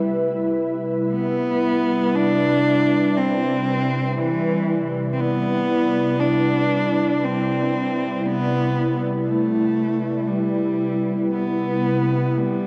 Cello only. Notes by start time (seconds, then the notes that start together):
Already playing: G3
1.12 B3
2.15 D4
3.17 C4
4.17 E3
5.13 C4
5.20 B3
6.20 D4
7.24 C4
8.25 B3
9.26 A3
10.28 G3
11.34 B3
12.38 G3